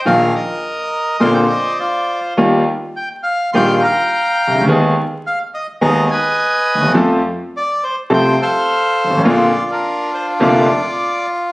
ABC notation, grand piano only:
X:1
M:4/4
L:1/16
Q:1/4=104
K:Bbmix
V:1 name="Grand piano" clef=bass
[B,,,B,,E,F,B,F]2 z6 [B,,,B,,D,B,CF]2 z6 | [E,,E,G,B,F]2 z6 [B,,,B,,E,G,B,F]2 z4 z/2 C,,/2 _D,,/2 =D,,/2 | [E,,E,A,_CA]2 z6 [E,,E,A,CA]2 z4 z/2 D,,/2 E,,/2 _F,,/2 | [F,,F,=A,C=A]2 z6 [C,,C,F,A,CA]2 z4 z/2 G,,,/2 _A,,,/2 =A,,,/2 |
[B,,,B,,D,B,CF]2 z6 [F,,,F,,D,B,CF]2 z6 |]